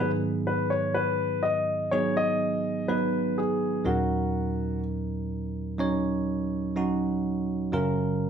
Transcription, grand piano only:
0.00 B4
0.47 B4
0.70 C#5
0.94 B4
1.43 D#5
1.91 C#5
2.17 D#5
2.88 B4
3.38 G#4
3.86 F#4

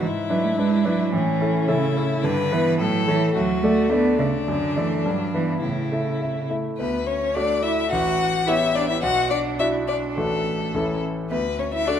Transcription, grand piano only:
0.02 G#2
0.30 D4 E4 B4
0.58 D4 E4 B4
0.85 D4 E4 B4
1.13 A2
1.41 C#4 E4 A4
1.68 C#4 E4 A4
1.97 C#4 E4 A4
2.24 G2
2.52 B3 E4 B4
2.79 A2
3.07 A3 A4 C#5
3.36 D2
3.64 A3 A4 D5
3.91 A3 A4 D5
4.19 A3 A4 D5
4.48 F#2
4.77 A3 A4 D5
5.06 G2
5.34 B3 E4 B4
5.63 A2
5.92 A3 E4 E5
6.21 A3 E4 E5
6.50 A3 E4 E5
6.80 D2
7.36 A3 F#4 D5
7.92 A1
8.47 B3 G4 C#5
9.03 B1
9.60 D4 F#4 D5
10.17 A1 D4 F#4 A4
10.74 A1 C#4 E4 A4
11.31 D2
11.87 D4 F#4 A4

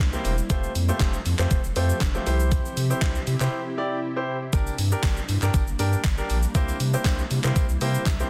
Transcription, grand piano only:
0.13 A#3 C4 E4 G4 C5
0.50 A3 C4 F4 G4 C5
0.88 A3 C4 F4 G4 C5
1.39 A3 C4 F4 G4 C5
1.76 A3 C4 F4 G4 C5
2.14 A3 C4 F4 G4 C5
2.26 E4 G4 C5
2.90 E4 G4 C5
3.41 E4 G4 C5
3.78 E4 G4 D5
4.16 E4 G4 C5
4.53 D4 G4 A#4
4.92 D4 G4 A#4
5.42 D4 G4 A#4
5.79 D4 G4 A#4
6.18 D4 G4 A#4
6.55 A#3 C4 E4 G4 C5
6.93 A#3 C4 E4 G4 C5
7.44 A#3 C4 E4 G4 C5
7.81 A#3 C4 E4 G4 C5
8.20 A#3 C4 E4 G4 C5

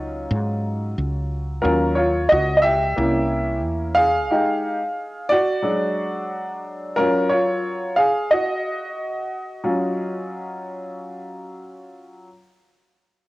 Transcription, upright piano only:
Already playing: F#3 C#4 D#4 F4
1.62 F#3 C#4 F4 A#4
1.95 F4 C#5
2.29 F#4 D#5
2.57 D#5
2.62 G4 E5
2.96 A#3 C#4 E4
3.95 G#4 F5
4.30 G#3 D#4 G4
5.29 F#4 D5
5.62 F#3 G#3 D4
6.96 F#3 C#4 F4 A#4
7.30 F4 C#5
7.96 G#4 F5
8.31 F#4 D#5
9.64 F#3 C#4 F4

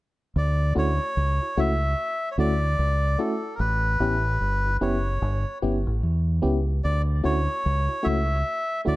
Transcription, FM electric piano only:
0.75 A3 C#4 E4 F#4
1.41 E4 F#4
1.57 A3 C#4 E4 F#4
2.38 A3 C#4 E4 F#4
2.62 E4 F#4
3.19 A3 C#4 E4 F#4
3.44 E4 F#4
4.00 B3 C#4 E4 G4
4.66 E4 G4
4.81 B3 C#4 E4 G4
5.62 B3 C#4 E4 G4
5.86 E4 G4
6.42 B3 C#4 E4 G4
6.67 E4 G4
7.23 A3 C#4 E4 F#4
7.89 E4 F#4
8.03 A3 C#4 E4 F#4
8.85 A3 C#4 E4 F#4

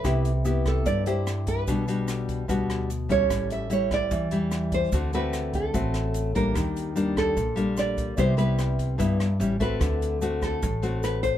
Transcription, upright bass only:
0.05 C2
0.86 G2
1.68 B1
2.49 D2
3.30 A1
4.11 E2
4.92 D2
5.74 A1
6.55 D#2
7.37 A#1
8.18 C2
8.99 G2
9.40 A1
9.80 D2
10.63 A1

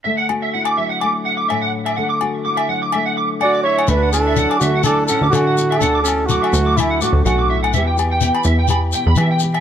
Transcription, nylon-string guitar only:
0.05 D3 A3
0.30 F#4
0.55 E4
0.78 F#3
1.03 A3
1.50 A2
1.98 D3 A3
2.22 F#4
2.46 E4
2.69 F#3
2.95 A3
3.40 muted nylon-string guitar stroke
3.88 D3 F#4
4.13 E4
4.37 F#3
4.62 A3
4.86 E4
5.09 A2
5.34 E4
5.58 E4
5.81 D3 F#4
6.07 E4
6.30 F#3
6.55 A3
6.79 A3
7.01 A2
7.27 E4
7.51 E4
7.75 E3 B3 E4 G4
7.98 G4
8.22 B3
8.45 E4
8.69 G4
8.94 B2
9.19 G4
9.43 G4

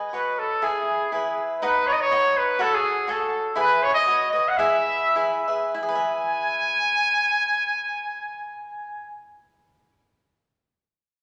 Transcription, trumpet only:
0.14 B4
0.39 A4
0.64 G#4
1.14 G#4
1.61 B4
1.87 C#5
1.93 D#5
2.01 C#5
2.37 B4
2.62 A4
2.74 G#4
3.11 A4
3.59 B4
3.83 C#5
3.94 D#5
4.31 D#5
4.49 F#5
4.57 E5
5.76 G#5

